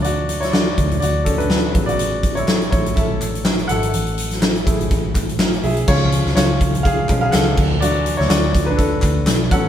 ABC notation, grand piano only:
X:1
M:4/4
L:1/16
Q:"Swing 16ths" 1/4=124
K:Dlyd
V:1 name="Grand piano"
[Fd]3 [Ec] [Fd]4 [Fd]2 [CA] [DB]4 [Fd]- | [Fd]3 [Ec]3 [Ec]2 [Ae]4 z2 [Af]2- | [Af]12 z2 [Ge]2 | [^Ec]4 [Ec]4 [G^e]3 [Ge] [Af]4 |
[Fd]3 [Ec] [Fd]3 [DB] [DA]4 z2 [Af]2 |]
V:2 name="Grand piano" clef=bass
[E,F,D]4 [E,F,D]2 z8 [C,F,B,]2- | [C,F,B,]4 z12 | z6 [A,EG]8- [A,EG]2 | [^E,G,C]8- [E,G,C]2 [E,G,C]2 z4 |
[E,F,D]12- [E,F,D]2 [F,B,C]2 |]